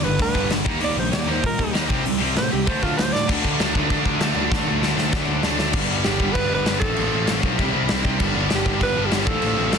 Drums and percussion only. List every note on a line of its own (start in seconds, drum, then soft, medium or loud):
0.19 kick loud
0.19 open hi-hat medium
0.35 kick medium
0.50 snare loud
0.50 open hi-hat medium
0.66 kick loud
0.81 open hi-hat medium
1.13 snare loud
1.13 open hi-hat medium
1.44 kick loud
1.44 open hi-hat medium
1.59 kick medium
1.75 snare loud
1.75 open hi-hat medium
1.90 kick loud
2.06 open hi-hat medium
2.36 snare loud
2.36 open hi-hat medium
2.67 kick loud
2.67 open hi-hat medium
2.83 kick medium
2.99 snare loud
2.99 open hi-hat medium
3.15 snare medium
3.29 kick loud
3.29 crash loud
3.29 crash medium
3.44 kick medium
3.60 snare loud
3.60 crash medium
3.75 kick medium
3.90 kick loud
3.90 crash medium
4.05 kick medium
4.20 snare loud
4.20 crash medium
4.52 kick loud
4.52 snare medium
4.83 snare medium
4.98 snare medium
5.13 kick loud
5.13 snare medium
5.43 snare medium
5.59 snare loud
5.73 kick loud
5.73 crash loud
5.73 crash medium
6.04 snare loud
6.04 crash medium
6.20 kick medium
6.35 kick loud
6.35 crash medium
6.66 snare loud
6.66 crash medium
6.82 kick loud
6.96 crash medium
7.27 snare loud
7.27 crash medium
7.43 kick medium
7.59 kick loud
7.59 crash medium
7.89 snare loud
7.89 crash medium
8.05 kick loud
8.20 kick loud
8.20 crash medium
8.50 snare loud
8.50 crash medium
8.66 kick loud
8.81 kick medium
8.81 crash medium
9.11 snare loud
9.11 crash medium
9.27 kick loud
9.42 crash medium
9.72 snare loud
9.72 crash medium